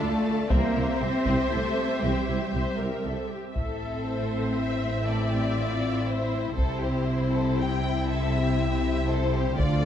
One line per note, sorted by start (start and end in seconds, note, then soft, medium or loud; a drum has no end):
0.00 0.10 D2 soft
0.00 0.09 D2 soft
0.00 0.50 A3 medium
0.00 0.50 D4 medium
0.00 0.08 D4 soft
0.00 0.50 F4 medium
0.00 0.50 A4 medium
0.00 0.51 A4 medium
0.00 0.46 D5 medium
0.00 0.50 F5 medium
0.00 0.46 A5 medium
0.50 0.59 C2 medium
0.50 0.61 C2 medium
0.50 0.69 E3 medium
0.50 0.70 G3 medium
0.50 1.00 A#3 medium
0.50 0.74 C4 medium
0.50 3.56 C4 medium
0.50 0.68 G4 medium
0.50 3.56 G4 medium
0.50 1.00 A#4 medium
0.50 0.68 C5 medium
0.50 3.56 C5 medium
0.50 2.48 C5 medium
0.50 3.36 E5 medium
0.50 3.56 E5 medium
0.50 taiko medium
0.76 0.86 C2 soft
0.76 0.85 C2 soft
0.76 0.84 E4 soft
1.01 1.10 C2 soft
1.01 1.12 C2 soft
1.01 1.52 C4 medium
1.01 1.09 G4 soft
1.01 1.52 C5 medium
1.25 1.37 C2 medium
1.25 1.35 C2 medium
1.25 1.49 C4 medium
1.25 taiko medium
1.51 1.60 C2 soft
1.51 1.63 C2 soft
1.51 2.02 A3 medium
1.51 1.59 E4 soft
1.51 2.03 A4 medium
2.01 2.11 C2 soft
2.01 2.14 C2 soft
2.01 2.19 E3 soft
2.01 2.19 G3 soft
2.01 3.04 G3 soft
2.01 2.26 C4 soft
2.01 2.21 G4 soft
2.01 3.06 G4 soft
2.01 2.21 C5 soft
2.28 2.37 C2 soft
2.28 2.40 C2 soft
2.28 2.36 E4 soft
2.54 2.63 C2 soft
2.54 2.65 C2 soft
2.54 2.78 C5 soft
2.79 2.87 C2 soft
2.79 2.90 C2 soft
2.79 3.04 A#4 soft
3.05 3.15 C2 soft
3.05 3.13 C2 soft
3.05 3.30 A4 soft
3.31 3.56 G4 soft
3.56 6.54 A1 soft
3.56 6.54 A2 soft
3.56 6.54 C4 soft
3.56 6.55 C4 soft
3.56 6.54 E4 soft
3.56 4.53 A4 soft
3.56 6.54 E5 soft
3.56 taiko soft
4.06 5.03 C5 soft
4.57 5.07 E5 medium
5.07 5.32 A4 soft
5.07 6.07 D5 medium
5.32 5.57 G4 soft
5.57 6.07 F4 soft
6.06 6.57 E4 soft
6.06 6.56 C5 medium
6.54 9.55 C2 soft
6.54 9.42 C4 soft
6.54 9.42 E4 soft
6.54 9.55 E4 soft
6.54 6.81 A4 medium
6.54 7.56 C5 medium
6.54 taiko soft
6.59 9.55 C3 soft
6.59 9.55 C4 soft
6.81 7.07 G4 soft
7.06 7.32 E4 soft
7.33 7.58 A4 soft
7.58 7.83 G4 soft
7.58 8.09 G5 medium
7.83 8.09 E4 soft
8.09 8.34 A4 medium
8.09 9.07 E5 medium
8.34 9.09 G4 soft
9.07 9.33 A4 medium
9.07 9.59 C5 medium
9.32 9.58 G4 medium
9.58 9.85 D2 medium
9.58 9.85 D3 medium
9.58 9.85 A3 medium
9.58 9.85 F4 soft
9.58 9.84 F4 medium
9.58 9.85 F4 medium
9.58 9.85 D5 medium
9.58 taiko medium